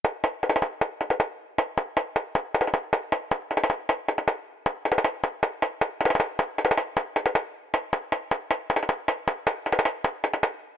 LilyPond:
\new DrumStaff \with { instrumentName = "Drums" } \drummode { \time 4/4 \tempo 4 = 156 hh8 hh8 \tuplet 3/2 { hh16 hh16 hh16 hh16 r16 r16 } hh8 hh16 hh16 hh4 | hh8 hh8 hh8 hh8 \tuplet 3/2 { hh16 r16 r16 hh16 hh16 hh16 } hh8 hh8 | hh8 hh8 \tuplet 3/2 { hh16 hh16 hh16 hh16 r16 r16 } hh8 hh16 hh16 hh4 | \tuplet 3/2 { hh16 r16 r16 hh16 hh16 hh16 } hh8 hh8 hh8 hh8 hh8 hh32 hh32 hh32 hh32 |
hh8 hh8 \tuplet 3/2 { hh16 hh16 hh16 hh16 r16 r16 } hh8 hh16 hh16 hh4 | hh8 hh8 hh8 hh8 \tuplet 3/2 { hh16 r16 r16 hh16 hh16 hh16 } hh8 hh8 | hh8 hh8 \tuplet 3/2 { hh16 hh16 hh16 hh16 r16 r16 } hh8 hh16 hh16 hh4 | }